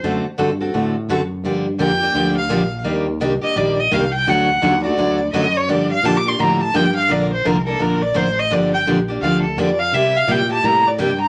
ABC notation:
X:1
M:4/4
L:1/16
Q:"Swing" 1/4=170
K:Gm
V:1 name="Violin"
z16 | z4 g6 f6 | z6 e2 d2 e2 f2 g2 | ^f6 d6 e2 ^c2 |
d2 f2 (3a2 d'2 c'2 b2 a2 g2 f2 | [K:Bb] d2 c2 B2 A2 B2 d2 c2 e2 | d2 g2 z4 f2 A2 d2 f2 | =e2 f2 g2 a2 b2 d2 g2 b2 |]
V:2 name="Steel-string acoustic guitar"
[D,A,C^FA]2 z2 [D,A,CFA] z [CFA]2 [D,A,CFA]2 z2 [D,A,CFA] z3 | [D,F,B,DG]2 z2 [D,F,B,DG] z [B,DG]2 [D,F,B,DG]2 z2 [D,F,B,DG] z3 | [E,G,B,DG]2 z2 [E,G,B,DG] z [B,DG]2 [E,G,B,DG]2 z2 [E,G,B,DG] z3 | [D,^F,A,D^F]2 z2 [D,F,A,DF] z [A,DF]2 [D,F,A,DF]2 z2 [D,F,A,DF] z3 |
[D,F,B,DG]2 z2 [D,F,B,DG] z [B,DG]2 [D,F,B,DG]2 z2 [D,F,B,DG] z3 | [K:Bb] [D,F,B,DB]2 z2 [D,F,B,DB] z [B,DB]2 [D,F,B,DB]2 z2 [D,F,B,DB] z3 | [D,F,B,DG]2 z2 [D,F,B,DG] z [B,DG]2 [D,F,B,DG]2 z2 [D,F,B,DG] z3 | [C,G,B,=EG]2 z2 [C,G,B,EG] z [B,EG]2 [C,G,B,EG]2 z2 [C,G,B,EG] z3 |]
V:3 name="Fretless electric bass" clef=bass
^F,,2 z2 G,,4 A,,4 F,,4 | G,,4 F,,4 D,,4 B,,,4 | E,,4 C,,2 z2 B,,,4 C,,4 | D,,4 E,,4 D,,4 ^F,,4 |
G,,4 B,,4 A,,4 G,,4 | [K:Bb] B,,,4 C,,4 B,,,4 A,,,4 | G,,,4 B,,,4 D,,4 F,,4 | C,4 B,,4 A,,4 G,,4 |]